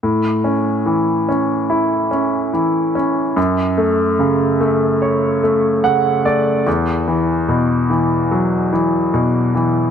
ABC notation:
X:1
M:4/4
L:1/8
Q:1/4=73
K:A
V:1 name="Grand piano" clef=bass
A,, C E, C E C E, C | F,, A, C, A, c A, [C,f] [A,d] | E,, E, B,, E, F, E, B,, E, |]